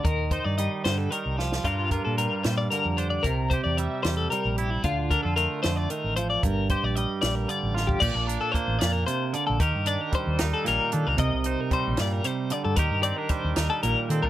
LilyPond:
<<
  \new Staff \with { instrumentName = "Clean electric guitar" } { \time 6/8 \key g \minor \tempo 4. = 75 bes'8 c''16 d''16 ees''8 c''16 a'16 bes'8 g'16 f'16 | f'8 bes'16 a'16 bes'8 c''16 d''16 bes'8 c''16 d''16 | bes'8 c''16 d''16 e''8 c''16 a'16 bes'8 g'16 e'16 | f'8 bes'16 a'16 bes'8 c''16 d''16 bes'8 c''16 d''16 |
bes'8 c''16 d''16 ees''8 d''16 bes'16 d''8 bes'16 g'16 | d''8 bes'16 a'16 c''8 d''16 bes'16 c''8 d''16 a'16 | bes'8 d''16 bes'16 c''8 bes'16 a'16 bes'8 a'16 bes'16 | ees''8 c''16 bes'16 c''8 d''16 bes'16 c''8 d''16 a'16 |
bes'8 d''16 bes'16 c''8 bes'16 a'16 bes'8 a'16 bes'16 | }
  \new Staff \with { instrumentName = "Clean electric guitar" } { \clef bass \time 6/8 \key g \minor << { r8 ees'2~ ees'8 | <g d' f' bes'>8 f'2 d'8 | r8 g'2 e'8 | r8 d'16 f'2~ f'16 |
r8 g'2 f'8 | g'16 a'16 d'2~ d'8 | g'8 d'4 ees'4 d'8 | bes'8 ees'2~ ees'8 |
g'8 c'16 d'8. ees'4 c'16 d'16 | } \\ { ees4 g8 d8 ees8 f8 | g,4 g4 d4 | c4 g4 g4 | d4 a8 d8 ees8 f8 |
g,4 g4 d4 | bes,4 bes8 bes,8 c8 d8 | ees4 g4 bes,4 | c4 g8 bes,8 c8 d8 |
ees4 g4 bes,4 | } >> }
  \new Staff \with { instrumentName = "Fingered electric bass" } { \clef bass \time 6/8 \key g \minor ees,8. g,8 r16 g,8 r16 c,8. | g,8. bes,8 r16 bes,8 r16 f,8. | c,8. e,8 r16 e,8 r16 bes,,8. | d,8. f,8 r16 f,8 r16 a,,8. |
g,,8. bes,,8 r16 bes,,8 r16 a,,8. | bes,,16 bes,,8 r8 a,,16 f,8 r8. bes,,16 | ees,16 g,8 r8 ees,16 ees,16 r16 bes,,16 r16 ees16 cis,16 | c,16 c,8 r8 bes,,16 g,8 r8. g,16 |
ees,16 g,8 r8 ees,16 ees,16 r16 bes,,16 r16 ees16 c,16 | }
  \new DrumStaff \with { instrumentName = "Drums" } \drummode { \time 6/8 <hh bd>8 <hh bd>8 hh8 <hh sn>8 hh8 sn16 sn16 | <hh bd>8 <hh bd>8 hh8 <hh sn>8 hh8 hh8 | <hh bd>8 <hh bd>8 hh8 <hh sn>8 hh8 hh8 | <hh bd>8 <hh bd>8 hh8 <hh sn>8 hh8 hh8 |
<hh bd>8 <hh bd>8 hh8 <hh sn>8 hh8 sn16 bd16 | <cymc bd>8 hh8 <hh bd>8 <hh sn>8 hh8 hh8 | <hh bd>8 hh8 <hh bd>8 <hh sn>8 hh8 hh8 | <hh bd>8 hh8 <hh bd>8 <hh sn>8 hh8 hh8 |
<hh bd>8 hh8 <hh bd>8 <hh sn>8 hh8 hh8 | }
>>